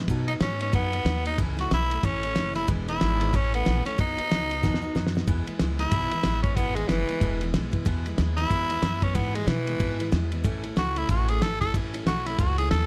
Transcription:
0.08 B2 F#3 B3 D#4 F#4, kick, ride
0.28 B3 D#4 F#4, ride
0.40 G#2 F#3 B3 C#4 D#4 F#4, snare, ride
0.59 B3 C#4 D#4 F#4, ride
0.73 F#2 B2 F#3 B3 D#4 F#4, kick, snare, ride
0.92 B3 D#4 F#4, ride
1.05 D#2 F#3 B3 D#4 F#4, snare, ride
1.25 B3 D#4 F#4, ride
1.38 C#2 A2 E3 A3 C#4 E4, kick, ride
1.57 A3 C#4 E4 F#4, snare, ride
1.71 B1 E3 A3 C#4 E4, snare, ride
1.90 A3 C#4 E4, ride
2.03 A1 A2 E3 A3 C#4 E4, kick, snare, ride
2.23 A3 C#4 E4, ride
2.35 F#1 E3 A3 C#4 E4, snare, ride
2.53 A3 C#4 E4, snare, ride
2.67 E1 E2 B2 E3 G#3 B3 E4, kick, ride
2.88 E3 G#3 B3 E4, ride
3.01 G#1 E3 G#3 B3 E4, snare, ride
3.20 E3 G#3 B3 E4, ride
3.33 A1 A2 E3 A3 C#4 E4, kick, snare, ride
3.52 A3 B3 C#4 E4, ride
3.65 A#1 E3 A3 C#4 E4, snare, ride
3.85 A3 C#4 E4, muted upright bass stroke, snare, ride
3.98 B1 B2 F#3 B3 D#4 F#4, kick, ride
4.17 B3 D#4 F#4, muted upright bass stroke, ride
4.30 C#2 F#3 B3 D#4 F#4, snare, ride
4.50 B3 D#4 F#4, ride
4.63 D#2 B2 F#3 B3 D#4 F#4, kick, snare
4.74 snare
4.82 B3 D#4 F#4
4.95 F#2 F#3 B3 D#4 F#4, snare
5.07 snare
5.15 B3 D#4 F#4, snare
5.27 E2 B2 E3 G#3 B3 E4, kick, ride
5.46 E3 G#3 B3 E4, muted upright bass stroke, ride
5.59 C#2 E3 G#3 B3 E4, snare, ride
5.79 E3 G#3 B3 E4, snare, ride
5.91 B1 E2 B2 E3 G#3 B3 E4, kick, ride
6.11 E3 G#3 B3 E4, muted upright bass stroke, ride
6.23 A1 E3 G#3 B3 E4, snare, ride
6.43 E3 G#3 B3 C#4 E4, kick, ride
6.56 G#1 E2 B2 E3 G#3 B3 E4, kick, ride
6.75 E3 G#3 B3 E4, ride
6.88 F#1 E3 G#3 B3 E4, snare, ride
7.09 E3 G#3 B3 E4, muted upright bass stroke, ride
7.21 E1 E2 B2 E3 G#3 B3 E4, kick, ride
7.41 E3 G#3 B3 E4, ride
7.54 B1 E3 G#3 B3 E4, snare, ride
7.72 E3 G#3 B3 E4, kick, ride
7.85 E2 B2 E3 G#3 B3 E4, kick, ride
8.06 E3 G#3 B3 E4, ride
8.18 D#2 E3 G#3 B3 E4, snare, ride
8.37 E3 G#3 B3 E4, snare, ride
8.50 E2 B2 E3 G#3 B3 E4, kick, ride
8.70 E3 G#3 B3 E4, ride
8.82 F#2 E3 G#3 B3 E4, snare, ride
9.01 E3 G#3 B3 C#4 E4, kick, ride
9.15 E2 G#2 B2 E3 G#3 B3 E4, kick, ride
9.35 E3 G#3 B3 E4, ride
9.47 B2 E3 G#3 B3 E4, snare, ride
9.66 E3 G#3 B3 E4, ride
9.79 E2 G#2 B2 E3 G#3 B3 E4, kick, ride
9.99 E3 G#3 B3 E4, ride
10.12 E2 E3 G#3 B3 E4, snare, ride
10.32 E3 G#3 B3 E4, ride
10.44 A1 A2 E3 A3 C#4 E4, kick, ride
10.64 A3 C#4 E4, ride
10.76 C#2 E3 A3 C#4 E4 F#4, snare, ride
10.96 A3 C#4 E4, ride
11.09 A1 A2 E3 A3 C#4 E4 F#4, kick, ride
11.28 A3 C#4 E4 G#4, ride
11.41 G#1 E3 A3 C#4 E4 A4, snare, ride
11.61 A3 C#4 E4 A4, kick, ride
11.74 A1 A2 E3 A3 C#4 E4, kick, ride
11.94 A3 C#4 E4, ride
12.06 B1 E3 A3 C#4 E4 F#4, snare, ride
12.26 A3 C#4 E4, snare, ride
12.39 C#2 A2 E3 A3 C#4 E4 F#4, kick, ride
12.58 A3 C#4 E4 G#4, ride
12.71 D#2 E3 A3 C#4 E4 A4, snare, ride

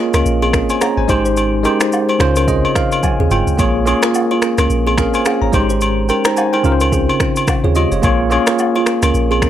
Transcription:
Already playing: A#3 F4 G#4 C#5 D#5
0.14 C#2 C#4 A#4, finger snap, cross-stick, high agogo, shaker
0.26 A#1, shaker
0.42 C4 G#4, high agogo
0.53 C#4 A#4, finger snap, kick, cross-stick, shaker
0.69 C5 G#5, high agogo, shaker
0.81 C#4 G#4 C#5 A#5, finger snap, cross-stick, low woodblock, shaker
0.97 G#1 C5 G#5
1.08 G#1 G#3 D#4 G4 C5, kick, high agogo, shaker
1.25 D#4 C5, shaker
1.37 high agogo, shaker
1.63 G#3 C#4 D#4 G4 A#4 C5, high agogo, shaker
1.80 D#4 C5, finger snap, cross-stick, shaker
1.92 low woodblock, shaker
2.09 D#4 C5, high agogo
2.19 C#2 C#3 C#4 F4 C5 C#5, finger snap, cross-stick, shaker
2.36 C#4 A#4, high agogo, shaker
2.48 C4 G#4 D#5, kick, shaker
2.65 high agogo
2.75 F5, finger snap, kick, cross-stick, shaker
2.92 high agogo, shaker
3.03 G#5, kick, high tom, low woodblock, shaker
3.19 D#2 C4 G#4
3.31 F1 G#3 F4 G5, mid tom, high agogo, shaker
3.47 floor tom, shaker
3.58 A#1 A#3 F4 G#4 C#5, kick, high agogo, shaker
3.85 A#3 C#4 F4 G#4 A#4 C#5, high agogo, shaker
4.02 F4 C#5, finger snap, cross-stick, shaker
4.14 low woodblock, shaker
4.31 F4 C#5, high agogo
4.42 finger snap, cross-stick, shaker
4.58 C#2 C#4 A#4, finger snap, cross-stick, high agogo, shaker
4.70 A#1, shaker
4.87 C4 G#4, high agogo
4.98 C#4 G#4 A#4 F5, finger snap, kick, cross-stick, shaker
5.14 C5 G#5, high agogo, shaker
5.25 C#4 G#4, finger snap, cross-stick, low woodblock, shaker
5.42 G#1 C#5 A#5
5.52 G#1 G#3 D#4 G4 C5, kick, high agogo, shaker
5.70 D#4 C5, shaker
5.81 high agogo, shaker
6.09 C#4 A#4 G5, high agogo, shaker
6.25 D#4 C5 A#5, finger snap, cross-stick, shaker
6.37 C5 G#5, low woodblock, shaker
6.53 D#4 A#4 C5 G5, high agogo
6.63 C#2 C#3 C#4 F4 A#4, shaker
6.72 C5
6.80 C#4 A#4, high agogo, shaker
6.92 C4 G#4, kick, shaker
7.09 high agogo
7.20 finger snap, kick, cross-stick, shaker
7.36 high agogo, shaker
7.47 finger snap, kick, cross-stick, low woodblock, shaker
7.64 D#2 C4 F4 G#4 C#5
7.75 G#3 F4 G4 D#5, high agogo, shaker
7.92 F1 F4 C#5, shaker
8.02 A#1 A#3 F4 G#4 C#5, kick, high agogo, shaker
8.30 A#3 C#4 F4 G#4 A#4 C#5, high agogo, shaker
8.47 F4 C#5, finger snap, cross-stick, shaker
8.59 low woodblock, shaker
8.76 F4 C#5, high agogo
8.86 finger snap, cross-stick, shaker
9.02 C#2 C#4 A#4, finger snap, cross-stick, high agogo, shaker
9.14 A#1, shaker
9.31 C4 G#4, high agogo
9.42 C#4 A#4, finger snap, kick, cross-stick, shaker

